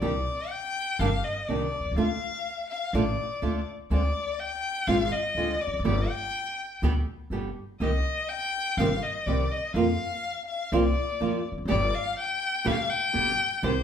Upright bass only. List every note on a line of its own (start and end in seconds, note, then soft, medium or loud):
0.02 0.23 C2 loud
0.99 1.20 G1 loud
1.49 1.69 C2 medium
1.79 1.84 B1 medium
1.85 1.91 C2 medium
1.91 1.96 C#2 medium
1.96 2.17 D2 loud
2.93 3.14 A1 loud
3.42 3.63 D2 medium
3.90 4.11 D2 medium
4.87 5.08 G#1 loud
5.35 5.56 D2 medium
5.67 5.73 E1 medium
5.73 5.79 F1 medium
5.79 5.84 F#1 medium
5.85 6.06 G1 loud
6.82 7.03 D2 medium
7.30 7.51 G1 medium
7.80 8.01 C2 loud
8.77 8.98 G1 loud
9.26 9.47 C2 medium
9.74 9.95 F2 loud
10.72 10.93 C2 medium
11.21 11.41 F2 medium
11.52 11.57 E1 medium
11.58 11.64 F1 medium
11.65 11.70 F#1 medium
11.72 11.91 G1 loud
12.66 12.87 D2 loud
13.15 13.35 G1 medium
13.63 13.83 C2 loud